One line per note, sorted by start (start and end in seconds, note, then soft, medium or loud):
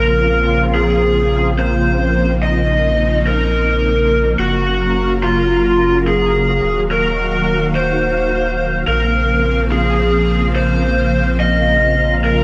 0.00 4.36 A#1 medium
0.00 4.35 C#3 medium
0.00 4.35 F3 medium
0.00 6.60 A#3 medium
0.00 4.35 C4 medium
0.00 2.13 F4 medium
0.00 0.64 A#4 loud
0.74 1.47 G#4 loud
1.59 2.32 C5 medium
2.15 4.37 D#4 medium
2.43 3.16 D#5 medium
3.27 4.28 A#4 loud
4.39 6.61 F#1 medium
4.39 6.61 C#3 medium
4.39 8.84 F#3 medium
4.39 5.12 F#4 loud
4.39 6.61 A#4 medium
4.39 12.44 F5 medium
5.23 5.96 F4 loud
6.08 6.80 G#4 medium
6.63 8.85 D#1 medium
6.63 8.85 D#3 medium
6.63 12.44 A#3 medium
6.63 8.86 F#4 medium
6.91 7.64 A#4 medium
7.75 8.76 C5 loud
8.88 12.44 A#1 medium
8.88 12.44 C#3 medium
8.88 12.44 F3 medium
8.88 12.44 C4 medium
8.88 9.61 A#4 loud
9.72 10.45 G#4 medium
10.56 11.29 C5 medium
11.40 12.13 D#5 medium
12.24 12.44 A#4 loud